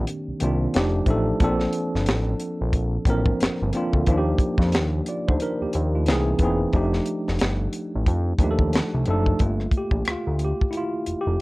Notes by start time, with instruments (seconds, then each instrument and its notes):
Already playing: tine electric piano D#3 A#3 C4 D4 G4
0.07 closed hi-hat
0.28 analog synth bass C2
0.40 analog synth bass C2, tine electric piano D#3 A#3 C4 D4 F4, closed hi-hat
0.74 analog synth bass F1, tine electric piano F3 A3 D4 D#4 G4, snare, closed hi-hat
1.06 analog synth bass A1, tine electric piano F3 A3 D4 D#4, kick, closed hi-hat
1.10 tine electric piano A4
1.40 analog synth bass A#1, tine electric piano F3 A#3 C4 D4, kick, closed hi-hat
1.44 tine electric piano A4
1.60 snare
1.73 closed hi-hat
1.95 analog synth bass G1, snare
2.06 analog synth bass A1, snare, closed hi-hat
2.40 closed hi-hat
2.61 analog synth bass A#1
2.73 kick, closed hi-hat
3.05 analog synth bass A1, tine electric piano F3 A#3 C4 D4, kick, closed hi-hat
3.10 tine electric piano A#4
3.26 kick
3.40 analog synth bass G1, snare, closed hi-hat
3.62 analog synth bass G1
3.73 tine electric piano F3 A#3 C4 D4, closed hi-hat
3.77 tine electric piano F4
3.93 analog synth bass D2, kick
4.06 analog synth bass D#2, tine electric piano F3 A#3 D4 D#4, kick, closed hi-hat
4.11 tine electric piano F4
4.17 tine electric piano G4
4.38 kick, closed hi-hat
4.58 analog synth bass F2, kick, snare
4.72 analog synth bass D#2, snare, closed hi-hat
5.06 tine electric piano F4 D5, closed hi-hat
5.28 analog synth bass D2, tine electric piano D#4 C5, kick
5.40 tine electric piano D4 A#4, closed hi-hat
5.61 analog synth bass D#2, tine electric piano A#3 G4
5.73 analog synth bass D#2, closed hi-hat
5.95 tine electric piano A3 F4
6.06 analog synth bass C2, tine electric piano E3 A#3 C4, snare, closed hi-hat
6.10 tine electric piano D#4 G#4
6.39 analog synth bass E1, tine electric piano E3 A#3 C4, kick, closed hi-hat
6.43 tine electric piano D#4 G#4
6.73 analog synth bass F1, tine electric piano F3 A3 D4 D#4 G4, kick, closed hi-hat
6.93 snare
7.06 closed hi-hat
7.28 analog synth bass F1, snare
7.39 analog synth bass G1, snare, closed hi-hat
7.73 closed hi-hat
7.95 analog synth bass A1
8.06 analog synth bass F2, kick, closed hi-hat
8.39 analog synth bass D#2, tine electric piano F3 A3 D4, kick, closed hi-hat
8.43 tine electric piano D#4 G4
8.51 tine electric piano A4
8.59 kick
8.73 snare, closed hi-hat
8.94 analog synth bass C2
9.06 analog synth bass F#1, tine electric piano F3 A3 D4 D#4, closed hi-hat
9.10 tine electric piano A4
9.26 kick
9.39 analog synth bass G1, tine electric piano A3 A#3 F4, kick, closed hi-hat
9.60 cross-stick
9.71 kick, closed hi-hat
9.77 tine electric piano G4
9.91 analog synth bass A#1, kick
10.05 analog synth bass D2, cross-stick, closed hi-hat
10.11 tine electric piano F4
10.27 analog synth bass D2
10.39 closed hi-hat
10.44 tine electric piano G4
10.61 kick
10.71 tine electric piano E4, closed hi-hat
10.77 tine electric piano F4
11.06 analog synth bass F1, closed hi-hat
11.21 tine electric piano G4
11.27 analog synth bass F1